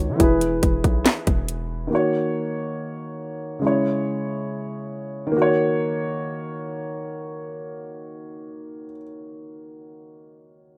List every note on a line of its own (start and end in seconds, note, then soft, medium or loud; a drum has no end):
0.00 0.11 C#2 loud
0.00 0.22 D#3 medium
0.00 0.22 D#4 medium
0.00 0.21 F#4 medium
0.00 0.22 C#5 medium
0.09 0.19 D#3 loud
0.16 1.86 E3 medium
0.16 1.87 E4 medium
0.20 0.61 E1 loud
0.20 1.88 G#4 medium
0.20 1.90 B4 medium
0.20 kick loud
0.20 closed hi-hat medium
0.41 closed hi-hat medium
0.63 0.83 E1 loud
0.63 kick loud
0.63 closed hi-hat medium
0.84 1.05 B1 loud
0.84 kick loud
0.84 closed hi-hat medium
1.06 snare loud
1.06 clap medium
1.06 closed hi-hat medium
1.27 1.89 E1 loud
1.27 kick loud
1.27 closed hi-hat medium
1.48 closed hi-hat medium
1.87 3.57 D#3 medium
1.87 3.59 A#3 medium
1.92 3.60 F#4 medium
1.92 3.61 C#5 medium
3.59 5.29 C#3 medium
3.59 5.30 G#3 medium
3.64 5.31 E4 medium
3.64 5.33 C#5 medium
5.27 8.86 D#3 medium
5.32 8.91 A#3 medium
5.37 8.96 F#4 medium
5.42 9.01 C#5 medium